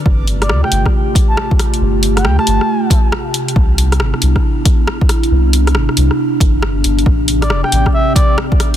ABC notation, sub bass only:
X:1
M:4/4
L:1/16
Q:"Swing 16ths" 1/4=137
K:Gmix
V:1 name="Sub bass" clef=bass
G,,,4 D,, z G,,, z8 z | G,,,4 D,, z G,,, z8 z | C,,4 G,,, z C,, z8 z | C,,4 G,,, z C,, z3 G,,,4 G,,,2 |
A,,,4 E,,,2 A,,,2 z8 |]